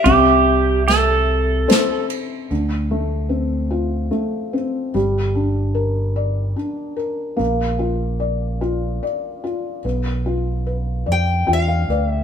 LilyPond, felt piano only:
\new Staff \with { instrumentName = "Felt piano" } { \time 3/4 \key d \minor \tempo 4 = 74 << { r2. | r2. | r2. | r2. |
r2 g''16 f''16 d''8 | } \\ { c2 <e' a' c''>4 | d8 a8 c'8 f'8 a8 c'8 | g8 d'8 bes'8 d''8 d'8 bes'8 | bes8 f'8 d''8 f'8 d''8 f'8 |
b8 f'8 b'8 d''8 f'8 b'8 | } >> }